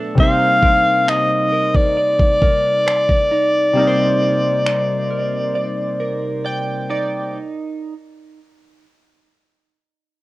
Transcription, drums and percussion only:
0.18 kick
0.63 kick
1.08 finger snap
1.75 kick
2.19 kick
2.42 kick
2.88 finger snap
3.09 kick
4.67 finger snap

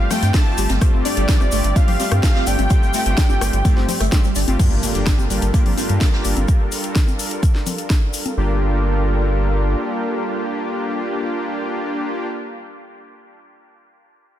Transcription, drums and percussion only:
0.10 cross-stick, snare, closed hi-hat, open hi-hat, high conga, low conga, shaker
0.23 snare, closed hi-hat, shaker
0.34 kick, snare, closed hi-hat, open hi-hat, shaker
0.57 closed hi-hat, open hi-hat, shaker
0.69 snare, closed hi-hat, high conga, shaker
0.81 kick, cross-stick, closed hi-hat, shaker
1.05 closed hi-hat, open hi-hat, shaker
1.17 closed hi-hat, shaker
1.28 kick, snare, closed hi-hat, low conga, shaker
1.41 cross-stick, high conga, shaker
1.52 closed hi-hat, open hi-hat, shaker
1.64 closed hi-hat, shaker
1.76 kick, closed hi-hat, shaker
1.88 open hi-hat, low conga
2.00 closed hi-hat, open hi-hat, high conga, shaker
2.11 cross-stick, closed hi-hat, shaker
2.23 kick, snare, closed hi-hat, shaker
2.35 snare
2.47 closed hi-hat, open hi-hat, shaker
2.59 closed hi-hat, high conga, shaker
2.70 kick, cross-stick, closed hi-hat, shaker
2.83 closed hi-hat, shaker
2.93 snare, closed hi-hat, open hi-hat, shaker
3.06 closed hi-hat, shaker
3.17 kick, snare, closed hi-hat, low conga, shaker
3.29 high conga, shaker
3.41 cross-stick, closed hi-hat, open hi-hat, shaker
3.53 closed hi-hat, shaker
3.65 kick, closed hi-hat, low conga, shaker
3.77 snare
3.88 closed hi-hat, open hi-hat, high conga, low conga, shaker
4.00 cross-stick, closed hi-hat, shaker
4.12 kick, snare, closed hi-hat, shaker
4.24 closed hi-hat, shaker
4.35 closed hi-hat, open hi-hat, shaker
4.48 closed hi-hat, high conga, shaker
4.59 kick, closed hi-hat, crash, shaker
4.83 closed hi-hat, open hi-hat, shaker
4.95 closed hi-hat, shaker
5.06 kick, snare, closed hi-hat, low conga, shaker
5.19 high conga, shaker
5.30 closed hi-hat, open hi-hat, shaker
5.42 closed hi-hat, shaker
5.54 kick, closed hi-hat, shaker
5.66 open hi-hat, low conga
5.78 closed hi-hat, open hi-hat, high conga, shaker
5.89 closed hi-hat, shaker
6.01 kick, snare, closed hi-hat, shaker
6.13 snare
6.25 closed hi-hat, open hi-hat, shaker
6.37 closed hi-hat, high conga, shaker
6.48 kick, closed hi-hat, shaker
6.72 open hi-hat, shaker
6.84 closed hi-hat, shaker
6.95 kick, snare, closed hi-hat, low conga, shaker
7.08 high conga, shaker
7.19 open hi-hat, shaker
7.31 closed hi-hat, shaker
7.43 kick, closed hi-hat, shaker
7.55 snare
7.67 open hi-hat, high conga, low conga, shaker
7.78 closed hi-hat, shaker
7.90 kick, snare, closed hi-hat, shaker
8.13 open hi-hat, shaker
8.26 closed hi-hat, high conga, shaker

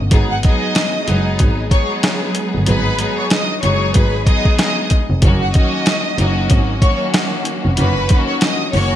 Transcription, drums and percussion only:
0.11 kick, closed hi-hat
0.43 kick, closed hi-hat
0.75 snare, closed hi-hat
1.08 closed hi-hat
1.39 kick, closed hi-hat
1.71 kick, closed hi-hat
2.03 snare, closed hi-hat
2.35 closed hi-hat
2.66 closed hi-hat
2.99 closed hi-hat
3.30 snare, closed hi-hat
3.63 closed hi-hat
3.94 kick, closed hi-hat
4.27 kick, closed hi-hat
4.45 kick
4.59 snare, closed hi-hat
4.90 kick, closed hi-hat
5.22 kick, closed hi-hat
5.54 kick, closed hi-hat
5.86 snare, closed hi-hat
6.18 closed hi-hat
6.50 kick, closed hi-hat
6.82 kick, closed hi-hat
7.14 snare, closed hi-hat
7.45 closed hi-hat
7.77 closed hi-hat
8.09 kick, closed hi-hat
8.41 snare, closed hi-hat
8.73 open hi-hat

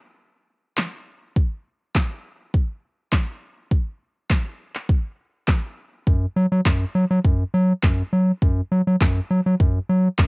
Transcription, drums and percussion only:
0.77 snare, clap
1.36 kick
1.95 kick, snare, clap
2.54 kick
3.12 kick, snare, clap
3.71 kick
4.30 kick, snare, clap
4.75 clap
4.89 kick
5.48 kick, snare, clap
6.07 kick
6.66 kick, snare, clap
7.25 kick
7.83 kick, snare, clap
8.42 kick
9.01 kick, snare, clap
9.60 kick
10.18 kick, snare, clap

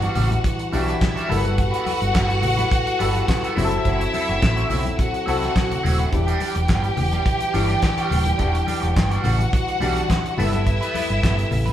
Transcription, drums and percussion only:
0.02 closed hi-hat
0.15 open hi-hat, muted conga, low conga
0.31 closed hi-hat, high conga
0.44 kick, closed hi-hat
0.59 closed hi-hat
0.72 open hi-hat, muted conga, high conga
0.88 closed hi-hat
1.01 kick, snare, clap, closed hi-hat, high conga
1.17 closed hi-hat
1.30 open hi-hat, low conga
1.45 closed hi-hat, high conga
1.58 kick, closed hi-hat, muted conga
1.74 closed hi-hat
1.86 open hi-hat, muted conga, high conga
2.02 closed hi-hat
2.15 kick, snare, clap, closed hi-hat, muted conga
2.30 closed hi-hat
2.42 open hi-hat, muted conga, low conga
2.58 closed hi-hat, high conga
2.72 kick, closed hi-hat
2.87 closed hi-hat
3.00 open hi-hat, muted conga, high conga
3.15 snare, closed hi-hat
3.28 kick, snare, clap, closed hi-hat, muted conga, high conga
3.44 closed hi-hat
3.57 open hi-hat, muted conga, low conga
3.71 closed hi-hat, high conga
3.85 kick, closed hi-hat
4.01 closed hi-hat
4.14 open hi-hat, high conga
4.29 closed hi-hat
4.42 kick, snare, clap, closed hi-hat, muted conga
4.57 closed hi-hat
4.70 open hi-hat, muted conga, low conga
4.85 closed hi-hat, high conga
4.99 kick, closed hi-hat, muted conga
5.14 closed hi-hat
5.28 open hi-hat, high conga
5.43 snare, closed hi-hat
5.56 kick, snare, clap, closed hi-hat, high conga
5.71 closed hi-hat, low conga
5.85 open hi-hat, low conga
5.99 closed hi-hat, high conga
6.13 kick, closed hi-hat
6.28 closed hi-hat
6.40 open hi-hat, muted conga, high conga
6.55 closed hi-hat
6.68 kick, snare, clap, closed hi-hat
6.84 closed hi-hat
6.97 open hi-hat, muted conga, low conga
7.13 closed hi-hat, high conga
7.26 kick, closed hi-hat, muted conga
7.40 closed hi-hat
7.54 open hi-hat, high conga
7.70 closed hi-hat
7.82 kick, snare, clap, closed hi-hat, muted conga, high conga
7.98 closed hi-hat
8.11 open hi-hat, low conga
8.26 closed hi-hat, high conga
8.39 kick, closed hi-hat
8.55 closed hi-hat
8.67 open hi-hat, high conga
8.83 closed hi-hat
8.96 kick, snare, clap, closed hi-hat
9.11 closed hi-hat
9.24 open hi-hat, muted conga, low conga
9.39 closed hi-hat, high conga
9.53 kick, closed hi-hat
9.68 closed hi-hat
9.80 open hi-hat, muted conga, high conga
9.97 snare, closed hi-hat
10.09 kick, snare, clap, closed hi-hat, muted conga, high conga
10.26 closed hi-hat
10.38 open hi-hat, low conga
10.53 closed hi-hat, high conga
10.67 kick, closed hi-hat, muted conga
10.82 closed hi-hat
10.95 open hi-hat, muted conga, high conga
11.10 closed hi-hat
11.23 kick, snare, clap, closed hi-hat
11.39 closed hi-hat
11.51 open hi-hat, low conga
11.67 closed hi-hat, high conga

